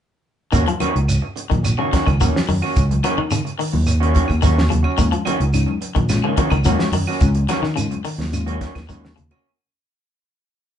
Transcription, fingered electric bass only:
0.53 0.64 D#2 medium
0.82 muted fingered electric bass stroke soft
0.96 1.18 C#2 medium
1.51 1.74 A#1 medium
1.93 muted fingered electric bass stroke soft
2.07 2.18 C#2 medium
2.21 2.33 D#2 medium
2.49 2.60 F#2 medium
2.77 3.00 C#2 medium
3.18 3.41 D#3 medium
3.73 4.20 D#2 medium
4.29 4.41 D#2 medium
4.44 4.67 D#2 medium
4.72 4.83 D#2 medium
4.99 5.11 D#2 loud
5.27 muted fingered electric bass stroke soft
5.40 5.64 C#2 medium
5.96 6.19 A#1 medium
6.37 muted fingered electric bass stroke soft
6.51 6.63 C#2 medium
6.65 6.77 D#2 medium
6.79 muted fingered electric bass stroke soft
6.92 7.05 F#2 medium
7.21 7.45 C#2 medium
7.62 7.86 D#3 medium
8.18 8.65 D#2 medium
8.76 8.87 D#2 medium
8.90 9.13 D#2 medium
9.18 9.29 D#2 medium

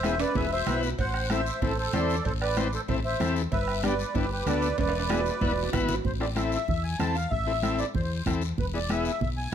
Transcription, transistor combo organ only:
0.04 0.15 B3 medium
0.04 0.15 E4 medium
0.04 0.16 G#4 medium
0.35 0.47 B3 medium
0.35 0.47 E4 medium
0.35 0.47 G#4 medium
0.67 0.89 B3 medium
0.67 0.90 E4 medium
0.67 0.90 B4 medium
1.30 1.42 C4 medium
1.30 1.42 E4 medium
1.30 1.42 A4 medium
1.62 1.73 C4 medium
1.62 1.73 E4 medium
1.62 1.73 A4 medium
1.93 2.16 C4 medium
1.93 2.16 E4 medium
1.93 2.16 C5 medium
2.57 2.68 C4 medium
2.57 2.68 E4 medium
2.57 2.68 C5 medium
2.88 3.00 C4 medium
2.88 3.00 E4 medium
2.88 3.00 A4 medium
3.20 3.42 C4 medium
3.20 3.42 E4 medium
3.20 3.42 A4 medium
3.83 3.94 B3 medium
3.83 3.94 D4 medium
3.83 3.95 G4 medium
4.14 4.26 B3 medium
4.14 4.26 D4 medium
4.14 4.26 E4 medium
4.46 4.69 B3 medium
4.46 4.69 D4 medium
4.46 4.69 A4 medium
5.09 5.21 B3 medium
5.09 5.21 E4 medium
5.09 5.21 G#4 medium
5.41 5.52 B3 medium
5.41 5.52 E4 medium
5.41 5.53 B4 medium
5.73 5.95 B3 medium
5.73 5.95 E4 medium
5.73 5.95 B4 medium
6.20 6.26 C4 medium
6.20 6.26 E4 medium
6.20 6.26 A4 medium
6.35 6.58 C4 medium
6.35 6.58 E4 medium
6.35 6.58 A4 medium
6.99 7.16 C4 medium
6.99 7.16 E4 medium
6.99 7.17 A4 medium
7.47 7.52 C4 medium
7.47 7.53 E4 medium
7.47 7.53 A4 medium
7.63 7.85 C4 medium
7.63 7.85 E4 medium
7.63 7.85 A4 medium
8.26 8.43 C4 medium
8.26 8.43 E4 medium
8.26 8.43 A4 medium
8.74 8.79 B3 medium
8.74 8.79 E4 medium
8.74 8.79 G#4 medium
8.89 9.11 B3 medium
8.89 9.12 E4 medium
8.89 9.12 G#4 medium

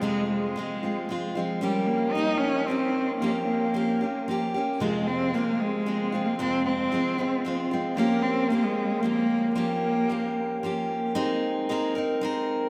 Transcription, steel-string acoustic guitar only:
0.01 0.56 F2 medium
0.01 0.56 C3 medium
0.01 0.54 F3 medium
0.01 0.56 G#3 medium
0.01 0.57 C4 medium
0.01 0.57 F4 medium
0.56 0.83 F3 medium
0.56 0.83 G#3 medium
0.56 0.83 C4 soft
0.56 0.82 F4 medium
0.83 1.08 F3 soft
0.83 1.09 G#3 soft
0.83 1.10 C4 soft
0.83 1.10 F4 soft
1.09 1.36 F3 medium
1.09 1.36 G#3 medium
1.09 1.35 C4 medium
1.09 1.34 F4 medium
1.35 1.60 F3 soft
1.35 1.62 G#3 soft
1.35 1.62 C4 soft
1.35 1.62 F4 medium
1.61 2.14 F3 medium
1.61 2.15 A#3 medium
1.61 2.16 C#4 medium
1.61 2.16 G4 medium
2.15 2.67 F3 soft
2.15 2.68 A#3 medium
2.15 2.70 C#4 medium
2.15 2.70 G4 medium
2.68 3.21 F3 soft
2.68 3.21 A#3 medium
2.68 3.23 G4 medium
3.22 3.73 F3 medium
3.22 3.74 A#3 medium
3.22 3.75 C#4 medium
3.22 3.75 G4 medium
3.74 4.01 F3 medium
3.74 4.01 A#3 soft
3.74 4.01 C#4 medium
3.74 4.00 G4 medium
4.01 4.28 A#3 soft
4.01 4.28 C#4 soft
4.01 4.27 G4 soft
4.28 4.54 F3 medium
4.28 4.55 A#3 medium
4.28 4.55 C#4 medium
4.28 4.53 G4 medium
4.54 4.81 A#3 soft
4.54 4.82 C#4 soft
4.54 4.81 G4 medium
4.80 5.33 F2 medium
4.80 5.33 C3 medium
4.80 5.33 F3 medium
4.80 5.34 G#3 medium
4.80 5.34 C4 medium
4.80 5.34 F4 medium
5.34 5.85 F3 medium
5.34 5.85 G#3 medium
5.34 5.87 C4 medium
5.34 5.87 F4 soft
5.86 6.13 F3 soft
5.86 6.13 G#3 soft
5.86 6.13 C4 soft
5.86 6.11 F4 medium
6.12 6.39 F3 soft
6.12 6.39 G#3 soft
6.12 6.39 C4 soft
6.12 6.39 F4 soft
6.39 6.92 F2 medium
6.39 6.92 C3 medium
6.39 6.91 F3 medium
6.39 6.91 G#3 medium
6.39 6.93 C4 medium
6.39 6.94 F4 medium
6.92 7.19 F3 medium
6.92 7.19 G#3 medium
6.92 7.18 C4 medium
6.92 7.17 F4 medium
7.18 7.43 F3 soft
7.18 7.45 G#3 soft
7.18 7.45 C4 soft
7.18 7.45 F4 soft
7.45 7.72 F3 medium
7.45 7.72 G#3 medium
7.45 7.72 C4 medium
7.45 7.70 F4 medium
7.71 7.96 F3 soft
7.71 7.98 G#3 soft
7.71 7.98 C4 soft
7.71 7.98 F4 medium
7.97 8.49 F3 medium
7.97 8.51 A#3 medium
7.97 8.51 C#4 medium
7.97 8.52 G4 medium
8.50 9.01 F3 medium
8.50 9.04 A#3 medium
8.50 9.04 C#4 medium
8.50 9.04 G4 medium
9.03 9.54 F3 medium
9.03 9.56 A#3 medium
9.03 9.56 C#4 medium
9.03 9.57 G4 medium
9.55 10.08 F3 medium
9.55 10.09 A#3 medium
9.55 10.10 C#4 medium
9.55 10.11 G4 medium
10.09 10.62 F3 soft
10.09 10.63 A#3 medium
10.09 10.64 C#4 medium
10.09 10.64 G4 medium
10.63 11.15 F3 medium
10.63 11.15 A#3 medium
10.63 11.16 C#4 medium
10.63 11.16 G4 medium
11.15 11.68 G#3 medium
11.15 11.69 C4 medium
11.15 11.69 D#4 medium
11.15 11.71 A#4 medium
11.69 11.96 G#3 medium
11.69 11.95 C4 medium
11.69 11.96 D#4 medium
11.69 11.94 A#4 medium
11.95 12.22 C4 soft
11.95 12.22 D#4 soft
11.95 12.22 A#4 medium
12.21 12.69 G#3 medium
12.21 12.69 C4 medium
12.21 12.69 D#4 medium
12.21 12.69 A#4 medium

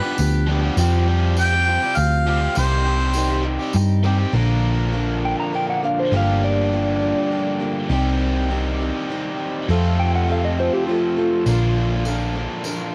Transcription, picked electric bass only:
0.19 0.69 D2 medium
0.77 1.77 F2 loud
1.97 2.47 D2 medium
2.57 3.56 C2 loud
3.74 4.24 G2 medium
4.33 5.33 A#1 medium
6.12 7.12 G1 loud
7.90 8.90 C2 loud
9.69 10.68 F2 medium
11.46 12.46 A#1 loud

